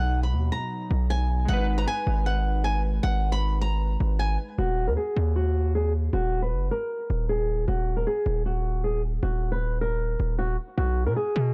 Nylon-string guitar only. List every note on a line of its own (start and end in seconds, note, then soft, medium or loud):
0.00 0.21 F#5 loud
0.23 0.50 B5 medium
0.52 1.07 A#5 medium
1.10 1.46 G#5 loud
1.48 1.76 F#5 loud
1.78 1.86 A#5 medium
1.88 2.24 G#5 medium
2.26 2.62 F#5 medium
2.64 2.82 G#5 medium
3.03 3.31 F#5 medium
3.32 3.60 B5 medium
3.61 4.16 A#5 medium
4.19 4.36 G#5 medium
4.58 4.86 F#4 loud
4.88 4.96 A#4 medium
4.97 5.33 G#4 medium
5.36 5.72 F#4 medium
5.75 5.92 G#4 medium
6.13 6.40 F#4 loud
6.42 6.70 B4 medium
6.71 7.26 A#4 medium
7.29 7.66 G#4 medium
7.68 7.95 F#4 loud
7.97 8.05 A#4 medium
8.07 8.43 G#4 medium
8.46 8.82 F#4 medium
8.84 9.01 G#4 medium
9.23 9.50 F#4 medium
9.52 9.79 B4 medium
9.81 10.36 A#4 medium
10.39 10.56 F#4 medium
10.78 11.05 F#4 medium
11.06 11.15 A#4 medium
11.16 11.53 G#4 medium